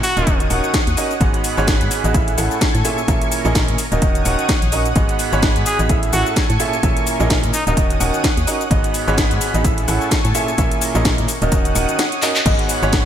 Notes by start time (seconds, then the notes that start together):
0.03 F#4 C#5 F#5 D#6, open hi-hat, shaker
0.17 D#1 D#3 C#4 D#4 F#4 A#4 D#5, closed hi-hat, shaker
0.27 D#3 C#4 D#4 F#4 A#4 D#5, kick, closed hi-hat, shaker
0.40 closed hi-hat, shaker
0.50 D#1 D#3 C#4 D#4 F#4 A#4 F#5, open hi-hat, shaker
0.64 shaker
0.74 kick, snare, closed hi-hat, shaker
0.87 D#2, closed hi-hat, shaker
0.97 C#4 D#4 F#4 A#4 D#5, open hi-hat, shaker
1.11 shaker
1.21 G#1 G#2 B3 D#4 F#4 G#4 D#5 B5, kick, closed hi-hat, shaker
1.34 closed hi-hat, shaker
1.44 open hi-hat, shaker
1.57 G#1 G#2 B3 D#4 F#4 G#4 C#5, shaker
1.68 kick, snare, closed hi-hat, shaker
1.81 G#2, closed hi-hat, shaker
1.91 open hi-hat, shaker
2.04 A1 B3 D#4 F#4 G#4 D#5, closed hi-hat, shaker
2.14 A2 C#4 E4 G#4 A4 E5 G#5 C#6, kick, closed hi-hat, shaker
2.28 closed hi-hat, shaker
2.38 A1 A2 C#4 E4 G#4 A4 F#5, open hi-hat, shaker
2.51 shaker
2.61 kick, snare, closed hi-hat, shaker
2.75 A2, closed hi-hat, shaker
2.85 A#2 C#4 E4 G#4 A4 E5, open hi-hat, shaker
2.98 shaker
3.08 A#1 A#2 C#4 E4 G#4 A#4 E5, kick, closed hi-hat, shaker
3.22 closed hi-hat, shaker
3.32 open hi-hat, shaker
3.45 A#1 A#2 C#4 E4 G#4 A#4 D#5, shaker
3.55 kick, snare, closed hi-hat, shaker
3.68 A#2, closed hi-hat, shaker
3.78 C#5 F#5 D#6, open hi-hat, shaker
3.92 D#1 D#3 C#4 D#4 F#4 A#4 D#5, closed hi-hat, shaker
4.02 D#3 C#4 D#4 F#4 A#4 D#5, kick, closed hi-hat, shaker
4.15 closed hi-hat, shaker
4.25 D#1 D#3 C#4 D#4 F#4 A#4 F#5, open hi-hat, shaker
4.39 closed hi-hat, shaker
4.49 kick, snare, closed hi-hat, shaker
4.62 A#1, closed hi-hat, shaker
4.72 C#4 D#4 F#4 A#4 D#5, open hi-hat, shaker
4.85 closed hi-hat, shaker
4.96 G#1 G#2 B3 D#4 F#4 G#4 D#5 B5, kick, closed hi-hat, shaker
5.09 closed hi-hat, shaker
5.19 open hi-hat, shaker
5.32 G#1 G#2 B3 D#4 F#4 G#4 C#5, shaker
5.42 kick, snare, closed hi-hat, shaker
5.56 G#2, closed hi-hat, shaker
5.66 G#4, open hi-hat, shaker
5.79 A1 B3 D#4 F#4 G#4 D#5, closed hi-hat, shaker
5.89 A2 C#4 E4 G#4 A4 E5 G#5 C#6, kick, closed hi-hat, shaker
6.03 closed hi-hat, shaker
6.13 A1 A2 C#4 E4 F#4 G#4 A4 F#5, open hi-hat, shaker
6.26 shaker
6.36 kick, snare, closed hi-hat, shaker
6.50 A2, closed hi-hat, shaker
6.60 A#2 C#4 E4 G#4 A4 E5, open hi-hat, shaker
6.73 shaker
6.83 A#1 A#2 C#4 E4 G#4 A#4 E5, kick, closed hi-hat, shaker
6.97 closed hi-hat, shaker
7.07 open hi-hat, shaker
7.20 A#1 A#2 C#4 E4 G#4 A#4 D#5, shaker
7.30 kick, snare, closed hi-hat, shaker
7.43 A#2, closed hi-hat, shaker
7.54 D#4 C#5 F#5 D#6, open hi-hat, shaker
7.67 D#1 D#3 C#4 D#4 F#4 A#4 D#5, closed hi-hat, shaker
7.77 D#3 C#4 D#4 F#4 A#4 D#5, kick, closed hi-hat, shaker
7.90 closed hi-hat, shaker
8.00 D#1 D#3 C#4 D#4 F#4 A#4 F#5, open hi-hat, shaker
8.14 shaker
8.24 kick, snare, closed hi-hat, shaker
8.37 D#2, closed hi-hat, shaker
8.47 C#4 D#4 F#4 A#4 D#5, open hi-hat, shaker
8.61 shaker
8.71 G#1 G#2 B3 D#4 F#4 G#4 D#5 B5, kick, closed hi-hat, shaker
8.84 closed hi-hat, shaker
8.94 open hi-hat, shaker
9.07 G#1 G#2 B3 D#4 F#4 G#4 C#5, shaker
9.18 kick, snare, closed hi-hat, shaker
9.31 G#2, closed hi-hat, shaker
9.41 open hi-hat, shaker
9.54 A1 B3 D#4 F#4 G#4 D#5, closed hi-hat, shaker
9.64 A2 C#4 E4 G#4 A4 E5 G#5 C#6, kick, closed hi-hat, shaker
9.78 closed hi-hat, shaker
9.88 A1 A2 C#4 E4 G#4 A4 F#5, open hi-hat, shaker
10.01 shaker
10.11 kick, snare, closed hi-hat, shaker
10.25 A2, closed hi-hat, shaker
10.35 A#2 C#4 E4 G#4 A4 E5, open hi-hat, shaker
10.48 shaker
10.58 A#1 A#2 C#4 E4 G#4 A#4 E5, kick, closed hi-hat, shaker
10.71 closed hi-hat, shaker
10.82 open hi-hat, shaker
10.95 A#1 A#2 C#4 E4 G#4 A#4 D#5, shaker
11.05 kick, snare, closed hi-hat, shaker
11.18 A#2, closed hi-hat, shaker
11.28 C#5 F#5 D#6, open hi-hat, shaker
11.42 D#1 D#3 C#4 D#4 F#4 A#4 D#5, closed hi-hat, shaker
11.52 D#3 C#4 D#4 F#4 A#4 D#5, kick, closed hi-hat, shaker
11.65 closed hi-hat, shaker
11.75 D#1 D#3 C#4 D#4 F#4 A#4 F#5, open hi-hat, shaker
11.89 closed hi-hat, shaker
11.99 snare, closed hi-hat, shaker
12.12 closed hi-hat, shaker
12.22 C#4 D#4 F#4 A#4 D#5, clap, open hi-hat, shaker
12.36 clap, shaker
12.46 G#1 G#2 B3 D#4 F#4 G#4 D#5 F#5 B5, kick, closed hi-hat, crash, shaker
12.54 F#5
12.59 closed hi-hat
12.64 C#5
12.69 open hi-hat, shaker
12.83 G#1 G#2 B3 D#4 F#4 G#4 C#5, shaker
12.93 kick, snare, closed hi-hat, shaker